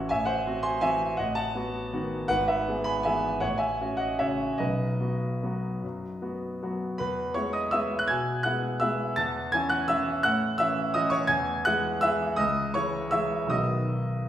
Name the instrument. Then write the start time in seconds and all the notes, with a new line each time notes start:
grand piano
Already playing: A1 E3 C#4 F#4 C#5 F#5
0.09 A1 E5 G#5
0.25 C5 F#5
0.47 C4 F#4
0.63 G#5 C6
0.81 E3 C4 F#4 E5 G#5
1.17 A1 D#5 F#5
1.35 F#5 A5
1.55 B3 F#4
1.93 D#3 B3 F#4
2.28 G#1 B4 F#5
2.48 B4 E5
2.68 B3 G#4
2.84 G#5 B5
3.03 E3 B3 G#4 E5 G#5
3.40 A1 C#5 F#5
3.58 E5 G#5
3.81 C#4 F#4
3.97 D#5 F#5
4.19 C#3 C#4 F#4 C#5 E5
4.58 B1 B4 D#5
5.00 B3 F#4
5.43 F#3 B3 F#4
5.83 F#2
6.22 B3 F#4
6.63 F#3 B3 F#4
6.98 E2 B4 B5
7.34 G#3 B3 E4 C#5 C#6
7.53 D#5 D#6
7.71 G#3 B3 E4 E5 E6
7.99 F#6
8.08 B2 G#5 G#6
8.43 G#3 B3 E4 F#5 F#6
8.80 G#3 B3 E4 E5 E6
9.16 E2 A5 A6
9.52 E3 C#4 E4 G#5 G#6
9.69 F#5 F#6
9.88 E3 C#4 E4 E5 E6
10.23 A2 F#5 F#6
10.58 E3 C#4 E4 E5 E6
10.94 E3 C#4 E4 D#5 D#6
11.10 C#5 C#6
11.27 E2 G#5 G#6
11.65 E3 G#3 E4 F#5 F#6
12.01 E3 G#3 E4 E5 E6
12.36 C#2 D#5 D#6
12.74 E3 G#3 E4 C#5 C#6
13.11 E3 G#3 E4 E5 E6
13.47 B1 D#3 B3 F#4 D#6
13.51 D#5